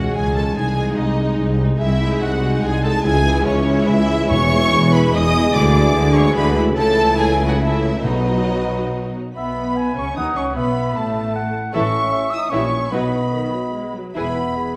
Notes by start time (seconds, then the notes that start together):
Already playing: C#2 G#3 C#4 F#4 G#4 F#5
0.14 C#2 G#4 G#5
0.35 G#3 C#4 A4 A5
0.55 C2 G#3 D#4 G#4 G#5
0.76 G#3 D#4
0.98 C2 D#4 D#5
1.18 G#3 D#4
1.39 C2
1.60 G#3 D#4
1.79 C2 G#3 E4 G#4 E5
2.00 G#3 D#4
2.21 C2 F#4 F#5
2.41 G#3 D#4
2.63 C2 G#4 G#5
2.83 G#3 D#4 A4 A5
3.03 C#2 E3 G#3 E4 G#4 G#5
3.24 G#3 E4
3.46 C#2 C#4 C#5
3.66 G#3 E4
3.87 C#2 E4 E5
4.09 G#3 E4
4.30 E1 E2 G#4 C#5 C#6
4.52 G#3 E4
4.72 E1 E2
4.92 G#3 E4 B4 B5
5.13 E1 E2 D#5 D#6
5.33 G#3 E4
5.53 D2 D3 E3 G#3 E4 D5 D6
5.75 G#3 E4
5.94 D2 D3
6.15 G#3 E4 C#5 C#6
6.35 D2 D3 B4 B5
6.56 G#3 E4
6.76 C#2 C#3 E3 A3 E4 A4 A5
7.18 G#4 G#5
7.46 F#4 F#5
7.58 E3 A3 E4 A4 E5
8.01 B1 B2 F#3 D#4 B4
8.05 F#4 D#5
9.34 B1 B2 B3 E5 B5
9.77 G#5
9.95 C#2 C#3 C#4 C#6
10.16 D#2 D#3 D#4 F#5 D#6
10.35 C#2 C#3 C#4 C#6
10.55 B1 B2 B3 E5 B5
10.96 A1 A2 A3 A5
11.36 F#5
11.73 A1 A2 E3 C#4 E4 A4 E5 C#6
12.12 E5
12.30 E4 E6
12.37 D#4 D#6
12.48 A#1 A#2 E3 C#4 E4 G4 C#5 E5 C#6
12.91 B1 B2 F#3 B3 D#4 F#4 B4 D#5 B5
13.32 D#3
13.53 F#3
13.74 G#3
13.95 F#3
14.15 E1 E2 E3 B3 E4 G#4 B4 E5 B5
14.56 G#4